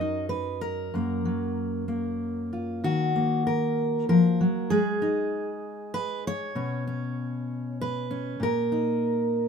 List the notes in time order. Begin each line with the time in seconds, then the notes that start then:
Already playing: F#2 F#3 A#4 D#5
0.01 D#4
0.29 B4
0.61 A#4
0.94 F#2 A#3
1.25 F#3
1.88 A#3
2.53 F4
2.84 D#3 F#4
3.16 A#3
3.47 A#4
4.09 F3 A#4
4.41 F#3
4.70 G#3 G#4
5.02 D#4
5.94 B4
6.27 C#5
6.55 B2 C#4
6.87 C#4
7.81 B4
8.11 C#4
8.40 A#2 A#4
8.72 D#4